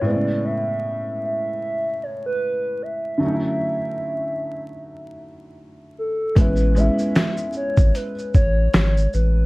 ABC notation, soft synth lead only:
X:1
M:4/4
L:1/16
Q:"Swing 16ths" 1/4=76
K:A
V:1 name="Soft synth lead"
d2 e4 e4 c B3 e2- | e12 z2 A2 | B2 e4 c2 B2 c4 B2 |]